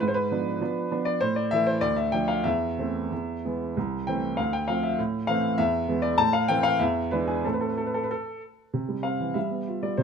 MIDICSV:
0, 0, Header, 1, 2, 480
1, 0, Start_track
1, 0, Key_signature, 0, "minor"
1, 0, Tempo, 599401
1, 10, Time_signature, 2, 2, 24, 8
1, 1450, Tempo, 650759
1, 2890, Tempo, 607287
1, 5290, Tempo, 638298
1, 7720, End_track
2, 0, Start_track
2, 0, Title_t, "Grand piano"
2, 0, Program_c, 0, 0
2, 2, Note_on_c, 0, 71, 90
2, 9, Note_on_c, 0, 44, 67
2, 60, Note_off_c, 0, 71, 0
2, 62, Note_on_c, 0, 72, 73
2, 114, Note_on_c, 0, 71, 91
2, 117, Note_off_c, 0, 72, 0
2, 178, Control_c, 0, 64, 127
2, 241, Note_off_c, 0, 44, 0
2, 250, Note_on_c, 0, 53, 46
2, 255, Note_on_c, 0, 59, 46
2, 257, Note_on_c, 0, 62, 52
2, 463, Note_off_c, 0, 53, 0
2, 466, Note_off_c, 0, 59, 0
2, 467, Note_off_c, 0, 62, 0
2, 488, Note_on_c, 0, 53, 52
2, 491, Note_on_c, 0, 59, 50
2, 496, Control_c, 0, 64, 0
2, 496, Note_on_c, 0, 62, 51
2, 701, Note_off_c, 0, 53, 0
2, 702, Note_off_c, 0, 59, 0
2, 705, Note_off_c, 0, 62, 0
2, 730, Note_on_c, 0, 53, 52
2, 735, Note_on_c, 0, 59, 50
2, 735, Note_on_c, 0, 62, 59
2, 840, Note_off_c, 0, 71, 0
2, 843, Note_on_c, 0, 74, 85
2, 942, Note_off_c, 0, 53, 0
2, 945, Note_off_c, 0, 59, 0
2, 945, Note_off_c, 0, 62, 0
2, 962, Note_off_c, 0, 74, 0
2, 965, Note_on_c, 0, 72, 98
2, 972, Note_on_c, 0, 45, 77
2, 1085, Note_off_c, 0, 72, 0
2, 1089, Note_on_c, 0, 74, 71
2, 1108, Control_c, 0, 64, 127
2, 1203, Note_off_c, 0, 45, 0
2, 1207, Note_off_c, 0, 74, 0
2, 1209, Note_on_c, 0, 76, 101
2, 1220, Note_on_c, 0, 52, 59
2, 1222, Note_on_c, 0, 57, 51
2, 1225, Note_on_c, 0, 64, 62
2, 1329, Note_off_c, 0, 76, 0
2, 1334, Note_on_c, 0, 72, 87
2, 1434, Note_off_c, 0, 52, 0
2, 1435, Note_off_c, 0, 57, 0
2, 1437, Note_off_c, 0, 64, 0
2, 1450, Note_on_c, 0, 74, 95
2, 1453, Note_off_c, 0, 72, 0
2, 1455, Note_on_c, 0, 38, 74
2, 1457, Control_c, 0, 64, 0
2, 1562, Note_on_c, 0, 76, 78
2, 1564, Note_off_c, 0, 74, 0
2, 1599, Control_c, 0, 64, 127
2, 1676, Note_off_c, 0, 38, 0
2, 1679, Note_off_c, 0, 76, 0
2, 1679, Note_on_c, 0, 79, 87
2, 1684, Note_on_c, 0, 53, 54
2, 1688, Note_on_c, 0, 57, 48
2, 1692, Note_on_c, 0, 62, 52
2, 1795, Note_on_c, 0, 77, 71
2, 1797, Note_off_c, 0, 79, 0
2, 1896, Note_off_c, 0, 53, 0
2, 1898, Note_off_c, 0, 57, 0
2, 1901, Note_off_c, 0, 62, 0
2, 1912, Note_on_c, 0, 76, 86
2, 1916, Note_off_c, 0, 77, 0
2, 1920, Note_on_c, 0, 40, 69
2, 1929, Control_c, 0, 64, 0
2, 2078, Control_c, 0, 64, 127
2, 2157, Note_off_c, 0, 40, 0
2, 2167, Note_on_c, 0, 52, 44
2, 2170, Note_on_c, 0, 57, 45
2, 2174, Note_on_c, 0, 60, 54
2, 2387, Note_off_c, 0, 52, 0
2, 2389, Note_off_c, 0, 57, 0
2, 2391, Note_off_c, 0, 60, 0
2, 2414, Note_on_c, 0, 40, 55
2, 2419, Control_c, 0, 64, 0
2, 2584, Control_c, 0, 64, 127
2, 2649, Note_off_c, 0, 40, 0
2, 2651, Note_off_c, 0, 76, 0
2, 2658, Note_on_c, 0, 52, 41
2, 2661, Note_on_c, 0, 56, 38
2, 2662, Note_on_c, 0, 59, 42
2, 2869, Note_off_c, 0, 52, 0
2, 2870, Note_off_c, 0, 56, 0
2, 2871, Note_off_c, 0, 59, 0
2, 2894, Note_on_c, 0, 36, 70
2, 2897, Control_c, 0, 64, 0
2, 3043, Control_c, 0, 64, 127
2, 3129, Note_off_c, 0, 36, 0
2, 3133, Note_on_c, 0, 79, 73
2, 3140, Note_on_c, 0, 52, 47
2, 3144, Note_on_c, 0, 57, 50
2, 3146, Note_on_c, 0, 60, 51
2, 3354, Note_off_c, 0, 52, 0
2, 3356, Note_off_c, 0, 57, 0
2, 3357, Note_off_c, 0, 60, 0
2, 3369, Note_on_c, 0, 77, 71
2, 3374, Note_off_c, 0, 79, 0
2, 3380, Note_on_c, 0, 38, 69
2, 3385, Control_c, 0, 64, 0
2, 3492, Note_off_c, 0, 77, 0
2, 3497, Note_on_c, 0, 79, 76
2, 3549, Control_c, 0, 64, 127
2, 3610, Note_off_c, 0, 38, 0
2, 3612, Note_on_c, 0, 77, 72
2, 3616, Note_off_c, 0, 79, 0
2, 3622, Note_on_c, 0, 53, 45
2, 3625, Note_on_c, 0, 57, 44
2, 3629, Note_on_c, 0, 60, 47
2, 3733, Note_off_c, 0, 77, 0
2, 3735, Note_on_c, 0, 76, 60
2, 3834, Note_off_c, 0, 53, 0
2, 3836, Note_off_c, 0, 57, 0
2, 3838, Note_off_c, 0, 60, 0
2, 3854, Note_off_c, 0, 76, 0
2, 3856, Note_on_c, 0, 45, 71
2, 3862, Control_c, 0, 64, 0
2, 4000, Control_c, 0, 64, 127
2, 4083, Note_on_c, 0, 77, 85
2, 4085, Note_off_c, 0, 45, 0
2, 4094, Note_on_c, 0, 52, 54
2, 4096, Note_on_c, 0, 57, 56
2, 4102, Note_on_c, 0, 60, 54
2, 4305, Note_off_c, 0, 52, 0
2, 4306, Note_off_c, 0, 57, 0
2, 4309, Note_off_c, 0, 60, 0
2, 4323, Note_off_c, 0, 77, 0
2, 4325, Note_on_c, 0, 76, 93
2, 4329, Note_on_c, 0, 40, 71
2, 4335, Control_c, 0, 64, 0
2, 4501, Control_c, 0, 64, 127
2, 4555, Note_off_c, 0, 40, 0
2, 4563, Note_on_c, 0, 52, 51
2, 4569, Note_on_c, 0, 56, 53
2, 4572, Note_on_c, 0, 59, 53
2, 4674, Note_on_c, 0, 74, 81
2, 4678, Note_off_c, 0, 76, 0
2, 4775, Note_off_c, 0, 52, 0
2, 4778, Note_off_c, 0, 56, 0
2, 4780, Note_off_c, 0, 59, 0
2, 4795, Note_off_c, 0, 74, 0
2, 4798, Note_on_c, 0, 81, 110
2, 4804, Control_c, 0, 64, 0
2, 4805, Note_on_c, 0, 45, 86
2, 4919, Note_off_c, 0, 81, 0
2, 4920, Note_on_c, 0, 77, 86
2, 4973, Control_c, 0, 64, 127
2, 5037, Note_off_c, 0, 45, 0
2, 5040, Note_on_c, 0, 79, 102
2, 5042, Note_off_c, 0, 77, 0
2, 5046, Note_on_c, 0, 52, 58
2, 5047, Note_on_c, 0, 57, 57
2, 5051, Note_on_c, 0, 60, 59
2, 5158, Note_on_c, 0, 77, 94
2, 5165, Note_off_c, 0, 79, 0
2, 5268, Note_off_c, 0, 52, 0
2, 5268, Note_off_c, 0, 57, 0
2, 5270, Note_off_c, 0, 60, 0
2, 5286, Note_off_c, 0, 77, 0
2, 5286, Note_on_c, 0, 76, 84
2, 5297, Control_c, 0, 64, 0
2, 5297, Note_on_c, 0, 40, 75
2, 5435, Control_c, 0, 64, 127
2, 5525, Note_off_c, 0, 40, 0
2, 5525, Note_on_c, 0, 71, 82
2, 5527, Note_off_c, 0, 76, 0
2, 5533, Note_on_c, 0, 52, 52
2, 5533, Note_on_c, 0, 56, 50
2, 5537, Note_on_c, 0, 62, 56
2, 5647, Note_off_c, 0, 71, 0
2, 5647, Note_on_c, 0, 68, 72
2, 5748, Note_off_c, 0, 52, 0
2, 5749, Note_off_c, 0, 56, 0
2, 5751, Note_off_c, 0, 62, 0
2, 5769, Note_off_c, 0, 68, 0
2, 5776, Note_on_c, 0, 57, 54
2, 5776, Note_on_c, 0, 60, 54
2, 5777, Note_on_c, 0, 45, 60
2, 5778, Note_on_c, 0, 69, 65
2, 5782, Control_c, 0, 64, 0
2, 5837, Note_on_c, 0, 71, 68
2, 5838, Note_off_c, 0, 69, 0
2, 5896, Note_on_c, 0, 69, 65
2, 5899, Note_off_c, 0, 71, 0
2, 5949, Control_c, 0, 64, 127
2, 5960, Note_on_c, 0, 71, 53
2, 5961, Note_off_c, 0, 69, 0
2, 6024, Note_on_c, 0, 69, 68
2, 6025, Note_off_c, 0, 71, 0
2, 6088, Note_off_c, 0, 69, 0
2, 6090, Note_on_c, 0, 71, 64
2, 6117, Note_off_c, 0, 45, 0
2, 6150, Note_on_c, 0, 69, 69
2, 6153, Note_off_c, 0, 71, 0
2, 6165, Note_off_c, 0, 57, 0
2, 6165, Note_off_c, 0, 60, 0
2, 6215, Note_off_c, 0, 69, 0
2, 6219, Note_on_c, 0, 71, 65
2, 6265, Control_c, 0, 64, 0
2, 6274, Note_on_c, 0, 69, 74
2, 6281, Note_off_c, 0, 71, 0
2, 6501, Note_off_c, 0, 69, 0
2, 6746, Note_on_c, 0, 48, 51
2, 6859, Note_on_c, 0, 55, 36
2, 6904, Control_c, 0, 64, 127
2, 6968, Note_on_c, 0, 77, 67
2, 6975, Note_on_c, 0, 60, 39
2, 7049, Note_off_c, 0, 55, 0
2, 7096, Note_on_c, 0, 52, 39
2, 7167, Note_off_c, 0, 60, 0
2, 7201, Note_on_c, 0, 76, 54
2, 7203, Note_off_c, 0, 48, 0
2, 7209, Note_on_c, 0, 55, 52
2, 7210, Note_off_c, 0, 77, 0
2, 7216, Note_off_c, 0, 52, 0
2, 7223, Control_c, 0, 64, 0
2, 7327, Note_on_c, 0, 59, 36
2, 7389, Control_c, 0, 64, 127
2, 7452, Note_on_c, 0, 65, 39
2, 7521, Note_off_c, 0, 59, 0
2, 7558, Note_off_c, 0, 55, 0
2, 7565, Note_off_c, 0, 76, 0
2, 7566, Note_on_c, 0, 74, 60
2, 7569, Note_on_c, 0, 55, 34
2, 7642, Note_off_c, 0, 65, 0
2, 7677, Note_on_c, 0, 72, 68
2, 7682, Note_on_c, 0, 48, 58
2, 7687, Note_off_c, 0, 74, 0
2, 7688, Note_off_c, 0, 55, 0
2, 7699, Control_c, 0, 64, 0
2, 7720, Note_off_c, 0, 48, 0
2, 7720, Note_off_c, 0, 72, 0
2, 7720, End_track
0, 0, End_of_file